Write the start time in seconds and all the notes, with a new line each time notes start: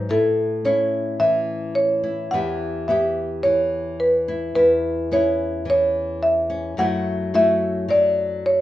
Already playing: A3
0.09 A2 E4 A4
0.65 C#4 E4 C#5
1.20 E3 E5
1.75 C#5
2.04 E4
2.31 E2 E3 B3 E4 F#5
2.35 G4
2.88 B3 E4 G4 E5
3.43 E3 C#5
4.00 B4
4.28 E4
4.55 E2 E4 B4
5.12 B3 C#4 E4 C#5
5.65 E3
5.70 C#5
6.23 E5
6.50 C#4
6.77 F#2 F#3 A3 E4 F#4 F#5
7.34 A3 E4 F#4 E5
7.88 F#3 D5
8.46 C#5